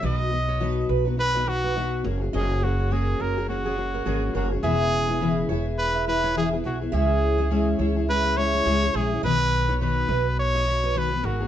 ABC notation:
X:1
M:4/4
L:1/16
Q:"Swing 16ths" 1/4=104
K:B
V:1 name="Steel-string acoustic guitar"
d z2 c2 z B z2 d z B z4 | d z2 c2 z A z2 G z A G z A z | e z2 d2 z c z2 e z c z4 | e z2 d2 z c z2 e z2 G z G z |
d z2 c2 z B z2 d z B z4 |]
V:2 name="Trumpet"
d6 z2 B2 F4 z2 | G2 F2 G2 A2 F6 F2 | G6 z2 B2 B2 G2 F2 | G6 z2 B2 c4 G2 |
B4 B4 c4 B2 F2 |]
V:3 name="Twelve-string acoustic guitar"
[B,,F,B,DFB]2 [B,DFB]2 [B,,F,B,DFB]3 [B,DFB] [B,DFB] [B,DFB] [B,DFB]2 [B,,F,B,DFB]2 [A,CFG] [CFG] | [F,A,CFG]2 [A,CFG]2 [F,A,CFG]3 [CFG] [A,CFG] [CFG] [A,CFG]2 [F,A,CFG]2 [A,CFG] [CFG] | [C,E,B,EGB]3 [B,EGB] [C,E,B,EGB]2 [B,EGB]4 [B,EGB]2 [C,E,B,EGB] [B,EGB] [B,EGB] [B,EGB] | [C,G,CEG]3 [CEG] [C,G,CEG]2 [G,CEG] [CEG] [G,CEG]2 [G,CEG]2 [C,G,CEG] [CEG] [G,CEG] [CEG] |
[B,,D,F,B,DB]3 [F,B,DB] [B,,D,F,B,DB]2 [F,B,DB]4 [F,B,DB]2 [B,,D,F,B,DB] [F,B,DB] [B,DGA] [B,DGA] |]
V:4 name="Upright bass" clef=bass
B,,,6 B,,,8 F,,,2 | F,,,6 F,,,6 G,,,2 F,,,2 | E,,,6 E,,,8 B,,,2 | C,,6 C,,6 C,,2 A,,,2 |
B,,,6 B,,,8 G,,,2 |]